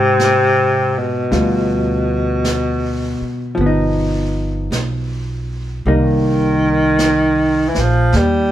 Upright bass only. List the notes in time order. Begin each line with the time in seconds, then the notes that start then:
Already playing: G#2
1.32 D2
3.21 muted upright bass stroke
3.57 G1
4.71 B1
5.86 C2
7.76 A#1
8.13 D#2